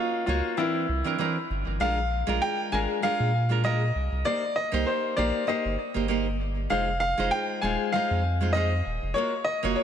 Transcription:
Already playing: A#3 F4 F#4 C#5
0.26 C#2 A#3 F4 F#4 C#5
0.57 E3 C4 D4 E4 A#4
0.89 C2
1.04 E3 C4 D4 A#4
1.19 E3 C4 D4 A#4
1.50 G1
1.67 G1
1.80 A#1 G#3 D4 F4 A#4 F5
2.27 A#1 G#3 D4 F4 A#4
2.42 G5
2.72 G#1 G#3 D4 F4 A#4 G#5
3.02 G#3 D4 F4 A#4 F5
3.20 A#2
3.49 G#3 D4 F4 A#4
3.64 G#3 D4 F4 A#4 D#5
3.95 C2
4.12 C2
4.25 A#3 D#4 G4 C5 D5
4.56 D#5
4.72 C2 A#3 D#4 G4 C5
4.87 C5
5.17 A#1 A#3 D#4 G4 C5 D5
5.47 A#3 D#4 G4 C5 D#5
5.65 G1
5.94 G1 A#3 D#4 G4 C5
6.08 A#3 D#4 G4 C5
6.70 F1 G#3 D#4 F4 C5 F5
7.00 F5
7.17 F1 G#3 D#4 F4 C5
7.31 G5
7.62 D#1 G#3 D#4 F4 C5 G#5
7.92 G#3 D#4 F4 C5 F5
8.11 F2
8.41 G#3 D#4 F4 C5
8.53 G#3 D#4 F4 D#5
8.57 C5
8.86 D#1
9.03 F1
9.14 A#3 F4 F#4 C#5
9.44 D#5
9.63 F#1 A#3 F4 F#4 C#5
9.76 C#5

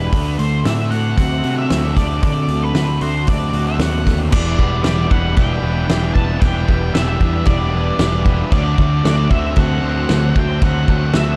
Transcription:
Already playing: E3 G3 B3 D4 E4 G4 B4 D6
0.11 D2 D3 A3 C4 F#4 A5, kick, open hi-hat
0.38 D2 A3 C5, open hi-hat
0.64 A2 D3 C4 F#4 E5, snare, open hi-hat
0.90 A3 F#4 F#5, open hi-hat
1.17 D2 D3 C4 F#5, kick, open hi-hat
1.43 C3 C4 F#4, open hi-hat
1.58 E5
1.70 D2 D3 A3 C4, snare, open hi-hat
1.96 D3 A3 D5, kick, snare, open hi-hat
2.22 D3 A3 D5, kick, open hi-hat
2.48 D2 A3, open hi-hat
2.63 B4
2.74 D2 D3 C4 F#4, snare, open hi-hat
3.01 D2 A3 F#4 C5, open hi-hat
3.27 D2 D3 C4 D5, kick, open hi-hat
3.53 D2 C4 F#4, open hi-hat
3.67 E5
3.79 D#2 D3 A3 C4 F#5, snare, open hi-hat
4.06 D3 A3, kick, snare, open hi-hat
4.31 E1 E2 E3 G3 B3 E4 D5, kick, crash
4.35 E4 B4 G5 D6
4.58 E1 E3 G3 B3 E4, kick
4.83 E1 E3 G3 B3 E4 G4 D5, snare, crash
5.09 E1 E3 G3 B3 D4 E4 F#5, kick
5.34 E1 E3 G3 B3 D4 E4 G5, kick, crash
5.62 E1 E3 G3 B3 D4 E4 B4
5.88 E1 E3 G3 B3 D4 E4, snare, crash
6.14 E1 E3 G3 B3 D4 E4 B4 A5, kick
6.41 E1 E2 E3 G3 B3 E4 G5, kick, crash
6.66 E1 E3 G3 B3 E4, kick
6.93 E1 E3 G3 B3 E4 G4 E5, snare, crash
7.19 E2 E3 G3 B3 D4 E4, kick
7.45 E1 E3 G3 B3 D4 E4 D5, kick, crash
7.72 E3 G3 B3 D4 E4 B4
7.98 E1 E3 G3 B3 D4 E4, snare, crash
8.23 E3 G3 B3 D4 E4 B4, kick
8.50 D2 D3 F#3 A3 C4 F#4 D5 A5 D6, kick, crash
8.55 F#4 C5
8.76 D2 D3 A3 C4 F#4, kick
9.01 D2 D3 A3 C4 F#4, snare, crash
9.05 A3 D5
9.29 D2 D3 A3 C4 F#4 E5, kick
9.55 D2 D3 A3 C4 F#4 F#5, kick, crash
9.81 D2 D3 A3 C4 F#4 C5
10.08 D2 D3 F#3 A3 C4 F#4, snare, crash
10.34 D2 D3 A3 C4 F#4 C5, kick
10.39 G5
10.61 D2 D3 F#3 A3 C4 F#4 F#5, kick, crash
10.87 D2 D3 A3 C4 F#4, kick
11.13 D2 D3 A3 C4 F#4 E5, snare, crash

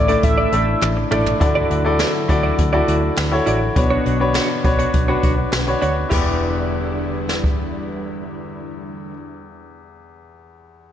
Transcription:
Already playing: A1 A2 D3 A3 D4 E4 A4 C#5 D5
0.08 A3 D4 E4 A4 D5, closed hi-hat
0.23 A1 E5, muted clean electric guitar stroke, kick, closed hi-hat
0.38 E4 A4 D5
0.52 A1 A3 D4 E4 A4 D5, closed hi-hat
0.67 muted clean electric guitar stroke
0.82 A1, muted clean electric guitar stroke, clap, high tom
0.97 muted clean electric guitar stroke
1.11 A1 A3 D4 E4 A4 D5, mid tom
1.26 muted clean electric guitar stroke, floor tom
1.40 D2 D3 F#3 E4 F#4 A4 D5, muted clean electric guitar stroke, kick, closed hi-hat
1.55 E4 F#4 D5
1.70 D2 E4 F#4 D5, closed hi-hat
1.85 E4 F#4 A4 D5, muted clean electric guitar stroke
1.99 E4 F#4 D5, snare, clap, closed hi-hat, tambourine
2.14 muted clean electric guitar stroke
2.28 D2 E4 F#4 A4 D5, muted clean electric guitar stroke, kick, closed hi-hat
2.43 E4 F#4 D5
2.58 D2, muted clean electric guitar stroke, kick, closed hi-hat
2.73 E4 F#4 A4 D5
2.87 D2 E4 F#4 D5, closed hi-hat
3.02 muted clean electric guitar stroke
3.17 D2, muted clean electric guitar stroke, snare, clap, closed hi-hat, tambourine
3.32 E4 F#4 A4 C#5, muted clean electric guitar stroke
3.46 A1 E4 F#4 D5, closed hi-hat
3.61 muted clean electric guitar stroke
3.76 B1 B2 D3 B3 D4 F#4 B4 C#5, muted clean electric guitar stroke, kick, closed hi-hat
3.90 D4 F#4 C#5
4.05 B1 D4 F#4 C#5, closed hi-hat
4.20 D4 F#4 B4 C#5, muted clean electric guitar stroke
4.34 D4 F#4 C#5, snare, clap, closed hi-hat
4.49 muted clean electric guitar stroke
4.64 B1 D4 F#4 B4 C#5, muted clean electric guitar stroke, kick, closed hi-hat
4.79 D4 F#4 C#5, closed hi-hat
4.94 B1, kick, closed hi-hat
5.08 D4 F#4 B4 C#5
5.23 B1 D4 F#4 C#5, kick, closed hi-hat
5.38 muted clean electric guitar stroke
5.52 B1, muted clean electric guitar stroke, snare, clap, closed hi-hat
5.67 D4 F#4 B4 C#5, muted clean electric guitar stroke, closed hi-hat
5.81 D2 D4 F#4 C#5, closed hi-hat
5.97 muted clean electric guitar stroke
6.09 E1 E2 D3 G3 E4 G4 B4, kick, clap, crash
6.14 D5
7.29 snare
7.44 kick

